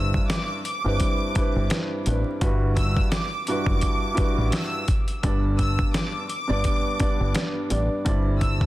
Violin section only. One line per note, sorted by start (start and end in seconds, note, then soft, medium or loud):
0.00 0.26 E6 medium
0.29 0.61 D6 medium
0.65 1.67 D6 medium
2.77 3.08 E6 medium
3.12 3.44 D6 medium
3.47 4.49 D6 medium
4.53 4.85 E6 medium
5.60 5.91 E6 medium
5.95 6.26 D6 medium
6.29 7.31 D6 medium
8.40 8.66 E6 medium